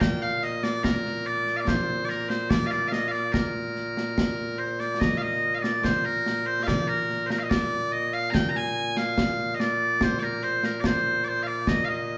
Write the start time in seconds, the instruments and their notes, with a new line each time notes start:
Already playing: bagpipes A#2
0.00 bagpipes G5, concert bass drum, snare
0.22 bagpipes F5
0.43 bagpipes D#5, snare
0.63 bagpipes D5, snare
0.83 bagpipes A#4, concert bass drum, snare
1.05 snare
1.26 bagpipes D5
1.47 snare
1.57 bagpipes D5 F5
1.67 bagpipes C5, concert bass drum, snare
2.05 bagpipes D5
2.09 bagpipes A#4, snare
2.29 bagpipes C5, snare
2.50 bagpipes D5, concert bass drum, snare
2.67 bagpipes F5
2.71 bagpipes D5, snare
2.88 bagpipes D#5 F5
2.92 snare
3.08 bagpipes D5 F5
3.14 snare
3.32 bagpipes A#4, concert bass drum, snare
3.76 snare
3.97 snare
4.18 concert bass drum, snare
4.58 bagpipes C5
4.80 bagpipes D5, snare
5.00 bagpipes D#5, concert bass drum, snare
5.17 bagpipes F5
5.22 bagpipes D#5
5.54 bagpipes D#5 F5
5.62 bagpipes D5, snare
5.84 bagpipes C5, concert bass drum, snare
6.05 bagpipes A#4
6.26 snare
6.46 bagpipes C5
6.63 bagpipes F5
6.67 bagpipes D5, concert bass drum, snare
6.88 bagpipes A#4
7.10 snare
7.26 bagpipes A#4 C5
7.30 snare
7.39 bagpipes F5
7.43 bagpipes D#5
7.50 bagpipes D5, concert bass drum, snare
7.92 bagpipes D#5
8.13 bagpipes F5
8.30 bagpipes G5 A#5
8.34 concert bass drum, snare
8.49 bagpipes A#5
8.56 bagpipes G#5
8.97 bagpipes F5, snare
9.18 concert bass drum, snare
9.55 bagpipes D#5
9.60 bagpipes D5, snare
10.01 bagpipes C5, concert bass drum, snare
10.19 bagpipes A#4 D5
10.43 bagpipes C5, snare
10.63 bagpipes A#4, snare
10.80 bagpipes D5, concert bass drum, snare
10.86 bagpipes C5
11.24 bagpipes C5 D5
11.43 bagpipes F5
11.47 bagpipes D5
11.67 bagpipes D#5, concert bass drum, snare
11.85 bagpipes D#5 F5